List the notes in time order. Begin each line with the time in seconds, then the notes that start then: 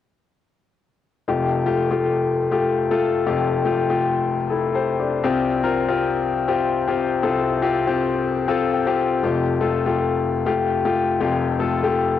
1.28 F1 F2 A3 F4 G4
1.66 A3 F4 G4
1.91 A3 F4 G4
2.51 A3 F4 G4
2.91 A3 F4 A4
3.26 F1 F2 A3 F4 G4
3.65 A3 F4 G4
3.90 A3 F4 G4
4.50 E4 A4
4.75 G4 C5
5.00 D4 G4
5.24 C2 C3 C4 F4 G4
5.63 C4 F4 A#4
5.88 C4 F4 G4
6.48 C4 F4 G4
6.88 C4 F4 G4
7.23 C2 C3 C4 F4 A4
7.62 C4 F4 G4
7.87 C4 F4 G4
8.48 C4 F4 A4 F5
8.73 G5
8.87 C4 F4 G4
9.23 F1 F2 A3 F4 G4
9.61 A3 F4 A4
9.86 A3 F4 G4
10.46 A3 F4 G4
10.85 A3 F4 G4
11.20 F1 F2 A3 F4 G4
11.59 A3 F4 A4
11.83 A3 F4 G4